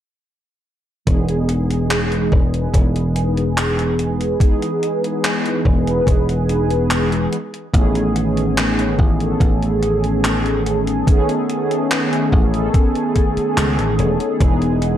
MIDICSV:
0, 0, Header, 1, 5, 480
1, 0, Start_track
1, 0, Key_signature, 4, "major"
1, 0, Tempo, 833333
1, 617, Time_signature, 4, 2, 24, 8
1, 8625, End_track
2, 0, Start_track
2, 0, Title_t, "Analog polysynth"
2, 0, Program_c, 0, 90
2, 606, Note_on_c, 0, 52, 91
2, 611, Note_on_c, 0, 56, 85
2, 615, Note_on_c, 0, 59, 84
2, 620, Note_on_c, 0, 63, 83
2, 624, Note_on_c, 0, 68, 101
2, 719, Control_c, 0, 64, 127
2, 1425, Note_off_c, 0, 52, 0
2, 1427, Note_off_c, 0, 56, 0
2, 1429, Note_off_c, 0, 59, 0
2, 1431, Note_off_c, 0, 63, 0
2, 1433, Note_off_c, 0, 68, 0
2, 1449, Note_on_c, 0, 52, 73
2, 1454, Note_on_c, 0, 56, 72
2, 1458, Note_on_c, 0, 59, 70
2, 1463, Note_on_c, 0, 63, 70
2, 1467, Note_on_c, 0, 71, 83
2, 2504, Note_off_c, 0, 52, 0
2, 2506, Note_off_c, 0, 56, 0
2, 2508, Note_off_c, 0, 59, 0
2, 2510, Note_off_c, 0, 63, 0
2, 2512, Note_off_c, 0, 71, 0
2, 2527, Note_on_c, 0, 52, 92
2, 2530, Note_on_c, 0, 56, 87
2, 2535, Note_on_c, 0, 59, 86
2, 2539, Note_on_c, 0, 63, 88
2, 2543, Note_on_c, 0, 68, 105
2, 3345, Note_off_c, 0, 52, 0
2, 3347, Note_off_c, 0, 56, 0
2, 3349, Note_off_c, 0, 59, 0
2, 3351, Note_off_c, 0, 63, 0
2, 3353, Note_off_c, 0, 68, 0
2, 3371, Note_on_c, 0, 52, 82
2, 3374, Note_on_c, 0, 56, 73
2, 3379, Note_on_c, 0, 59, 76
2, 3383, Note_on_c, 0, 63, 75
2, 3387, Note_on_c, 0, 71, 90
2, 4199, Note_off_c, 0, 52, 0
2, 4200, Note_off_c, 0, 56, 0
2, 4202, Note_off_c, 0, 59, 0
2, 4205, Note_off_c, 0, 63, 0
2, 4206, Note_off_c, 0, 71, 0
2, 4225, Control_c, 0, 64, 0
2, 4310, Control_c, 0, 64, 127
2, 4448, Note_on_c, 0, 51, 94
2, 4453, Note_on_c, 0, 57, 83
2, 4457, Note_on_c, 0, 59, 83
2, 4461, Note_on_c, 0, 61, 87
2, 4465, Note_on_c, 0, 68, 103
2, 5266, Note_off_c, 0, 51, 0
2, 5268, Note_off_c, 0, 57, 0
2, 5270, Note_off_c, 0, 59, 0
2, 5272, Note_off_c, 0, 61, 0
2, 5274, Note_off_c, 0, 68, 0
2, 5292, Note_on_c, 0, 51, 78
2, 5297, Note_on_c, 0, 57, 68
2, 5301, Note_on_c, 0, 59, 68
2, 5305, Note_on_c, 0, 61, 73
2, 5310, Note_on_c, 0, 69, 83
2, 6345, Note_off_c, 0, 51, 0
2, 6348, Note_off_c, 0, 57, 0
2, 6349, Note_off_c, 0, 59, 0
2, 6352, Note_off_c, 0, 61, 0
2, 6354, Note_off_c, 0, 69, 0
2, 6372, Note_on_c, 0, 51, 93
2, 6376, Note_on_c, 0, 57, 84
2, 6380, Note_on_c, 0, 59, 86
2, 6385, Note_on_c, 0, 61, 89
2, 6390, Note_on_c, 0, 68, 104
2, 7188, Note_off_c, 0, 51, 0
2, 7190, Note_off_c, 0, 57, 0
2, 7192, Note_off_c, 0, 59, 0
2, 7194, Note_off_c, 0, 61, 0
2, 7196, Note_off_c, 0, 68, 0
2, 7213, Note_on_c, 0, 51, 81
2, 7217, Note_on_c, 0, 57, 72
2, 7222, Note_on_c, 0, 59, 74
2, 7225, Note_on_c, 0, 61, 75
2, 7230, Note_on_c, 0, 69, 87
2, 8265, Note_off_c, 0, 51, 0
2, 8268, Note_off_c, 0, 57, 0
2, 8270, Note_off_c, 0, 59, 0
2, 8272, Note_off_c, 0, 61, 0
2, 8274, Note_off_c, 0, 69, 0
2, 8288, Note_on_c, 0, 52, 93
2, 8293, Note_on_c, 0, 56, 83
2, 8297, Note_on_c, 0, 59, 84
2, 8301, Note_on_c, 0, 63, 85
2, 8303, Control_c, 0, 64, 0
2, 8305, Note_on_c, 0, 68, 101
2, 8417, Control_c, 0, 64, 127
2, 8625, Note_off_c, 0, 52, 0
2, 8625, Note_off_c, 0, 56, 0
2, 8625, Note_off_c, 0, 59, 0
2, 8625, Note_off_c, 0, 63, 0
2, 8625, Note_off_c, 0, 68, 0
2, 8625, End_track
3, 0, Start_track
3, 0, Title_t, "Slap bass"
3, 0, Program_c, 1, 36
3, 616, Note_on_c, 1, 28, 90
3, 1304, Note_off_c, 1, 28, 0
3, 1336, Note_on_c, 1, 28, 75
3, 1536, Note_off_c, 1, 28, 0
3, 1577, Note_on_c, 1, 28, 74
3, 2504, Note_off_c, 1, 28, 0
3, 3255, Note_on_c, 1, 28, 75
3, 3455, Note_off_c, 1, 28, 0
3, 3495, Note_on_c, 1, 28, 97
3, 4183, Note_off_c, 1, 28, 0
3, 4457, Note_on_c, 1, 33, 94
3, 5144, Note_off_c, 1, 33, 0
3, 5177, Note_on_c, 1, 33, 75
3, 5376, Note_off_c, 1, 33, 0
3, 5417, Note_on_c, 1, 33, 78
3, 6344, Note_off_c, 1, 33, 0
3, 7099, Note_on_c, 1, 33, 79
3, 7297, Note_off_c, 1, 33, 0
3, 7817, Note_on_c, 1, 37, 90
3, 7943, Note_off_c, 1, 37, 0
3, 7943, Note_on_c, 1, 33, 82
3, 8057, Note_on_c, 1, 28, 86
3, 8066, Note_off_c, 1, 33, 0
3, 8158, Note_off_c, 1, 28, 0
3, 8298, Note_on_c, 1, 28, 91
3, 8625, Note_off_c, 1, 28, 0
3, 8625, End_track
4, 0, Start_track
4, 0, Title_t, "Muted slap bass strokes"
4, 7700, Note_on_c, 9, 29, 40
4, 7758, Note_off_c, 9, 29, 0
4, 8625, End_track
5, 0, Start_track
5, 0, Title_t, "Drums"
5, 617, Note_on_c, 9, 36, 113
5, 617, Note_on_c, 9, 42, 93
5, 674, Note_off_c, 9, 36, 0
5, 675, Note_off_c, 9, 42, 0
5, 741, Note_on_c, 9, 42, 40
5, 799, Note_off_c, 9, 42, 0
5, 857, Note_on_c, 9, 42, 66
5, 915, Note_off_c, 9, 42, 0
5, 982, Note_on_c, 9, 42, 39
5, 1040, Note_off_c, 9, 42, 0
5, 1099, Note_on_c, 9, 39, 108
5, 1099, Note_on_c, 9, 42, 87
5, 1156, Note_off_c, 9, 39, 0
5, 1156, Note_off_c, 9, 42, 0
5, 1220, Note_on_c, 9, 42, 39
5, 1278, Note_off_c, 9, 42, 0
5, 1336, Note_on_c, 9, 36, 98
5, 1394, Note_off_c, 9, 36, 0
5, 1462, Note_on_c, 9, 42, 38
5, 1520, Note_off_c, 9, 42, 0
5, 1576, Note_on_c, 9, 36, 110
5, 1579, Note_on_c, 9, 42, 92
5, 1634, Note_off_c, 9, 36, 0
5, 1637, Note_off_c, 9, 42, 0
5, 1704, Note_on_c, 9, 42, 38
5, 1761, Note_off_c, 9, 42, 0
5, 1819, Note_on_c, 9, 42, 65
5, 1876, Note_off_c, 9, 42, 0
5, 1943, Note_on_c, 9, 42, 40
5, 2001, Note_off_c, 9, 42, 0
5, 2059, Note_on_c, 9, 39, 112
5, 2059, Note_on_c, 9, 42, 86
5, 2117, Note_off_c, 9, 39, 0
5, 2117, Note_off_c, 9, 42, 0
5, 2182, Note_on_c, 9, 42, 38
5, 2240, Note_off_c, 9, 42, 0
5, 2299, Note_on_c, 9, 42, 65
5, 2356, Note_off_c, 9, 42, 0
5, 2423, Note_on_c, 9, 42, 39
5, 2481, Note_off_c, 9, 42, 0
5, 2536, Note_on_c, 9, 36, 117
5, 2540, Note_on_c, 9, 42, 95
5, 2594, Note_off_c, 9, 36, 0
5, 2598, Note_off_c, 9, 42, 0
5, 2663, Note_on_c, 9, 42, 42
5, 2721, Note_off_c, 9, 42, 0
5, 2782, Note_on_c, 9, 42, 67
5, 2839, Note_off_c, 9, 42, 0
5, 2905, Note_on_c, 9, 42, 39
5, 2962, Note_off_c, 9, 42, 0
5, 3021, Note_on_c, 9, 39, 112
5, 3021, Note_on_c, 9, 42, 86
5, 3078, Note_off_c, 9, 39, 0
5, 3078, Note_off_c, 9, 42, 0
5, 3142, Note_on_c, 9, 42, 38
5, 3200, Note_off_c, 9, 42, 0
5, 3255, Note_on_c, 9, 36, 105
5, 3313, Note_off_c, 9, 36, 0
5, 3383, Note_on_c, 9, 42, 39
5, 3441, Note_off_c, 9, 42, 0
5, 3495, Note_on_c, 9, 36, 115
5, 3501, Note_on_c, 9, 42, 94
5, 3553, Note_off_c, 9, 36, 0
5, 3558, Note_off_c, 9, 42, 0
5, 3623, Note_on_c, 9, 42, 41
5, 3681, Note_off_c, 9, 42, 0
5, 3740, Note_on_c, 9, 42, 65
5, 3798, Note_off_c, 9, 42, 0
5, 3862, Note_on_c, 9, 42, 37
5, 3920, Note_off_c, 9, 42, 0
5, 3978, Note_on_c, 9, 39, 110
5, 3978, Note_on_c, 9, 42, 87
5, 4035, Note_off_c, 9, 39, 0
5, 4035, Note_off_c, 9, 42, 0
5, 4103, Note_on_c, 9, 42, 39
5, 4160, Note_off_c, 9, 42, 0
5, 4220, Note_on_c, 9, 42, 65
5, 4277, Note_off_c, 9, 42, 0
5, 4342, Note_on_c, 9, 42, 38
5, 4400, Note_off_c, 9, 42, 0
5, 4456, Note_on_c, 9, 36, 125
5, 4459, Note_on_c, 9, 42, 93
5, 4514, Note_off_c, 9, 36, 0
5, 4517, Note_off_c, 9, 42, 0
5, 4581, Note_on_c, 9, 42, 38
5, 4639, Note_off_c, 9, 42, 0
5, 4700, Note_on_c, 9, 42, 64
5, 4757, Note_off_c, 9, 42, 0
5, 4823, Note_on_c, 9, 42, 40
5, 4881, Note_off_c, 9, 42, 0
5, 4941, Note_on_c, 9, 39, 121
5, 4941, Note_on_c, 9, 42, 86
5, 4999, Note_off_c, 9, 39, 0
5, 4999, Note_off_c, 9, 42, 0
5, 5063, Note_on_c, 9, 42, 40
5, 5121, Note_off_c, 9, 42, 0
5, 5177, Note_on_c, 9, 36, 105
5, 5234, Note_off_c, 9, 36, 0
5, 5302, Note_on_c, 9, 42, 38
5, 5359, Note_off_c, 9, 42, 0
5, 5417, Note_on_c, 9, 36, 122
5, 5419, Note_on_c, 9, 42, 93
5, 5474, Note_off_c, 9, 36, 0
5, 5477, Note_off_c, 9, 42, 0
5, 5544, Note_on_c, 9, 42, 38
5, 5602, Note_off_c, 9, 42, 0
5, 5660, Note_on_c, 9, 42, 62
5, 5717, Note_off_c, 9, 42, 0
5, 5782, Note_on_c, 9, 42, 38
5, 5840, Note_off_c, 9, 42, 0
5, 5900, Note_on_c, 9, 39, 113
5, 5900, Note_on_c, 9, 42, 92
5, 5958, Note_off_c, 9, 39, 0
5, 5958, Note_off_c, 9, 42, 0
5, 6024, Note_on_c, 9, 42, 38
5, 6081, Note_off_c, 9, 42, 0
5, 6142, Note_on_c, 9, 42, 63
5, 6200, Note_off_c, 9, 42, 0
5, 6263, Note_on_c, 9, 42, 36
5, 6320, Note_off_c, 9, 42, 0
5, 6378, Note_on_c, 9, 36, 119
5, 6381, Note_on_c, 9, 42, 89
5, 6435, Note_off_c, 9, 36, 0
5, 6438, Note_off_c, 9, 42, 0
5, 6503, Note_on_c, 9, 42, 39
5, 6561, Note_off_c, 9, 42, 0
5, 6621, Note_on_c, 9, 42, 64
5, 6679, Note_off_c, 9, 42, 0
5, 6745, Note_on_c, 9, 42, 38
5, 6803, Note_off_c, 9, 42, 0
5, 6862, Note_on_c, 9, 39, 112
5, 6862, Note_on_c, 9, 42, 85
5, 6919, Note_off_c, 9, 39, 0
5, 6919, Note_off_c, 9, 42, 0
5, 6985, Note_on_c, 9, 42, 38
5, 7043, Note_off_c, 9, 42, 0
5, 7098, Note_on_c, 9, 36, 109
5, 7156, Note_off_c, 9, 36, 0
5, 7222, Note_on_c, 9, 42, 37
5, 7279, Note_off_c, 9, 42, 0
5, 7338, Note_on_c, 9, 36, 116
5, 7339, Note_on_c, 9, 42, 88
5, 7396, Note_off_c, 9, 36, 0
5, 7397, Note_off_c, 9, 42, 0
5, 7461, Note_on_c, 9, 42, 38
5, 7519, Note_off_c, 9, 42, 0
5, 7578, Note_on_c, 9, 36, 59
5, 7578, Note_on_c, 9, 42, 60
5, 7635, Note_off_c, 9, 42, 0
5, 7636, Note_off_c, 9, 36, 0
5, 7702, Note_on_c, 9, 42, 36
5, 7759, Note_off_c, 9, 42, 0
5, 7819, Note_on_c, 9, 39, 114
5, 7819, Note_on_c, 9, 42, 85
5, 7877, Note_off_c, 9, 39, 0
5, 7877, Note_off_c, 9, 42, 0
5, 7942, Note_on_c, 9, 42, 36
5, 7999, Note_off_c, 9, 42, 0
5, 8058, Note_on_c, 9, 42, 61
5, 8115, Note_off_c, 9, 42, 0
5, 8181, Note_on_c, 9, 42, 37
5, 8238, Note_off_c, 9, 42, 0
5, 8297, Note_on_c, 9, 36, 113
5, 8298, Note_on_c, 9, 42, 85
5, 8355, Note_off_c, 9, 36, 0
5, 8356, Note_off_c, 9, 42, 0
5, 8420, Note_on_c, 9, 42, 36
5, 8478, Note_off_c, 9, 42, 0
5, 8536, Note_on_c, 9, 42, 60
5, 8594, Note_off_c, 9, 42, 0
5, 8625, End_track
0, 0, End_of_file